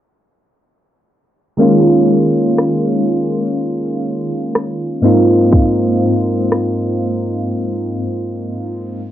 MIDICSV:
0, 0, Header, 1, 3, 480
1, 0, Start_track
1, 0, Tempo, 983607
1, 777, Time_signature, 4, 2, 24, 8
1, 4449, End_track
2, 0, Start_track
2, 0, Title_t, "Synth keys"
2, 0, Program_c, 0, 88
2, 766, Note_on_c, 0, 51, 70
2, 771, Note_on_c, 0, 56, 64
2, 776, Note_on_c, 0, 58, 62
2, 780, Note_on_c, 0, 61, 65
2, 786, Note_on_c, 0, 65, 72
2, 862, Control_c, 0, 64, 127
2, 2432, Note_off_c, 0, 51, 0
2, 2435, Note_off_c, 0, 56, 0
2, 2437, Note_off_c, 0, 58, 0
2, 2439, Note_off_c, 0, 61, 0
2, 2442, Note_off_c, 0, 65, 0
2, 2448, Note_on_c, 0, 44, 68
2, 2452, Note_on_c, 0, 58, 62
2, 2457, Note_on_c, 0, 60, 65
2, 2461, Note_on_c, 0, 63, 59
2, 2464, Control_c, 0, 64, 0
2, 2466, Note_on_c, 0, 65, 74
2, 2548, Control_c, 0, 64, 127
2, 4353, Note_off_c, 0, 44, 0
2, 4355, Note_off_c, 0, 58, 0
2, 4357, Note_off_c, 0, 60, 0
2, 4360, Note_off_c, 0, 63, 0
2, 4362, Note_off_c, 0, 65, 0
2, 4382, Control_c, 0, 64, 0
2, 4449, End_track
3, 0, Start_track
3, 0, Title_t, "Drums"
3, 1262, Note_on_c, 9, 37, 88
3, 1310, Note_off_c, 9, 37, 0
3, 2221, Note_on_c, 9, 37, 109
3, 2270, Note_off_c, 9, 37, 0
3, 2696, Note_on_c, 9, 36, 113
3, 2745, Note_off_c, 9, 36, 0
3, 3181, Note_on_c, 9, 37, 91
3, 3230, Note_off_c, 9, 37, 0
3, 4449, End_track
0, 0, End_of_file